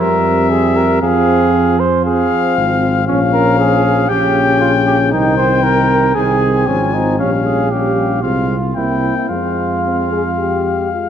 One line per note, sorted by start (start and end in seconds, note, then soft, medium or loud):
0.00 1.01 F2 medium
0.00 1.02 G3 soft
0.00 1.01 C4 soft
0.00 0.52 A#4 medium
0.00 1.02 E5 soft
0.50 0.78 G#4 medium
0.76 1.02 A#4 medium
1.02 2.27 F2 medium
1.02 1.76 F3 soft
1.02 1.77 C4 medium
1.02 1.81 G#4 medium
1.02 1.76 F5 soft
1.79 2.04 C5 medium
2.05 3.04 F3 soft
2.05 3.10 C4 medium
2.05 2.55 G#4 medium
2.05 3.03 F5 medium
2.57 3.09 G#1 medium
3.07 4.10 A#1 medium
3.07 4.08 F3 medium
3.07 3.19 C#4 medium
3.07 4.10 C#4 medium
3.07 4.11 F5 medium
3.33 3.58 A#4 medium
3.59 4.11 G#4 medium
4.10 5.14 A#1 medium
4.10 5.15 C#3 soft
4.10 5.15 C#4 medium
4.10 4.60 G4 medium
4.10 5.12 G5 medium
4.61 4.72 F4 medium
4.86 4.98 G4 medium
5.11 6.16 C2 medium
5.11 6.15 D#3 medium
5.11 6.16 C4 medium
5.11 5.37 D#4 medium
5.11 6.17 G5 medium
5.37 5.65 C5 medium
5.63 6.16 A#4 medium
6.15 6.69 C2 soft
6.15 6.66 D#3 soft
6.15 7.21 C4 soft
6.15 6.69 G#4 medium
6.15 7.19 G#5 soft
6.67 7.21 G#1 soft
6.67 7.18 F3 soft
6.67 6.95 C#4 medium
6.94 7.18 D#4 medium
7.19 8.25 A#1 soft
7.19 7.70 G3 soft
7.19 7.31 C#4 medium
7.19 7.71 C#4 soft
7.19 7.70 F5 soft
7.45 7.73 G#4 medium
7.71 8.22 G3 soft
7.71 8.22 C#4 soft
7.71 8.24 G4 medium
7.71 8.22 F5 soft
8.22 8.76 C2 soft
8.22 8.56 G#3 soft
8.22 8.57 C4 soft
8.22 8.76 F4 medium
8.22 8.56 F5 soft
8.76 9.10 C2 soft
8.76 9.26 A#3 soft
8.76 9.26 C4 soft
8.76 9.16 E4 soft
8.76 9.26 G5 soft
9.16 9.31 E4 soft
9.29 11.09 F2 soft
9.29 11.09 G#3 soft
9.29 9.78 C4 soft
9.29 10.93 F4 soft
9.29 11.09 F5 soft
9.84 10.10 C4 soft
10.12 10.24 G#4 soft
10.39 10.92 G4 soft
10.93 11.09 F4 soft